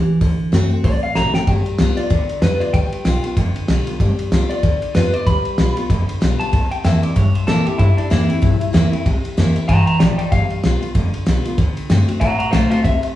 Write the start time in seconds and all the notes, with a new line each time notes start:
Already playing: E3 G4
0.08 muted upright bass stroke
0.21 D2 D3, kick, open hi-hat
0.39 muted upright bass stroke
0.52 F#2 D3 A3 C4 F#4, snare, open hi-hat
0.70 C4 F#4, muted upright bass stroke
0.84 C2 A2 D5, kick, open hi-hat
1.02 F5, muted upright bass stroke
1.15 A1 D3 A3 C4 F#4 A#5, snare
1.34 C4 F#4 G5, muted upright bass stroke, snare
1.47 G1 G3, kick, ride
1.66 muted upright bass stroke, ride
1.78 C2 G3 B3 F4, snare, ride
1.97 B3 F4 D5, muted upright bass stroke, ride
2.10 D2 D3, kick, ride
2.29 muted upright bass stroke, ride
2.41 F2 G3 B3 F4 B4, snare, ride
2.60 B3 F4 D5, muted upright bass stroke, ride
2.73 D2 G3 G5, kick, ride
2.92 muted upright bass stroke, ride
3.05 B1 G3 B3 F4, snare, ride
3.24 B3 F4, muted upright bass stroke, ride
3.37 F1 D3, kick, ride
3.56 muted upright bass stroke, ride
3.68 B1 G3 B3 F4, snare, ride
3.86 B3 F4, muted upright bass stroke, ride
4.00 G1 G3, kick, ride
4.18 muted upright bass stroke, ride
4.31 C2 G3 B3 F4, snare, ride
4.49 B3 F4 D5, muted upright bass stroke, ride
4.63 D2 D3, kick, ride
4.82 muted upright bass stroke, ride
4.95 F2 G3 B3 F4 B4, snare, ride
5.13 B3 F4 D5, muted upright bass stroke, ride
5.27 D2 G3 B5, kick, ride
5.45 muted upright bass stroke, ride
5.58 B1 G3 B3 F4, snare, ride
5.76 B3 F4, muted upright bass stroke, ride
5.90 F1 D3, kick, ride
6.09 muted upright bass stroke, ride
6.21 B1 G3 B3 F4, snare, ride
6.40 A5, muted upright bass stroke, ride
6.53 C2 C3, kick, ride
6.71 G5, muted upright bass stroke, ride
6.84 F2 E3 A#3 C4 E4 E5, snare, ride
7.02 C4 E4 D5, muted upright bass stroke, ride
7.16 G2 C#5, kick, ride
7.34 C5, muted upright bass stroke, ride
7.47 A#2 E3 A#3 C4 E4 A4, snare, ride
7.66 C4 E4 G4, muted upright bass stroke, ride
7.78 G2 C3 E4, kick, ride
7.97 D4, muted upright bass stroke, ride
8.10 E2 E3 A#3 C4 E4, snare, ride
8.28 C4 E4, muted upright bass stroke, ride
8.42 A#1 G2, kick, ride
8.61 muted upright bass stroke, ride
8.73 E2 E3 A#3 C4 E4, snare, ride
8.91 C4 E4, muted upright bass stroke, ride
9.06 C2 C3, kick, ride
9.24 muted upright bass stroke, ride
9.37 F2 E3 A#3 C4 E4, snare, ride
9.56 C4 E4, muted upright bass stroke, ride
9.68 G2 E3 G5 A#5, kick, ride
9.86 G5 A#5, muted upright bass stroke, ride
9.99 A1 F3 D5 G5, snare, ride
10.18 D5 G5, muted upright bass stroke, ride
10.32 G1 G3 F5, kick, ride
10.50 muted upright bass stroke, ride
10.63 B1 G3 B3 F4, snare, ride
10.81 B3 F4, muted upright bass stroke, ride
10.95 F1 D3, kick, ride
11.14 muted upright bass stroke, ride
11.26 B1 G3 B3 F4, snare, ride
11.45 B3 F4, muted upright bass stroke, ride
11.58 D2 D3, kick, ride
11.76 muted upright bass stroke, ride
11.89 G2 D3 A3 C4 F#4, snare, ride
12.08 C4 F#4, muted upright bass stroke, ride
12.20 A2 F#5 A#5, kick, ride
12.38 F#5 A#5, muted upright bass stroke, ride
12.51 B1 D3 A3 C4 F#4 C5 F5, snare, ride
12.70 C4 F#4 C5 F5, muted upright bass stroke, ride
12.84 C2 C3 E5, kick, ride
13.02 muted upright bass stroke, ride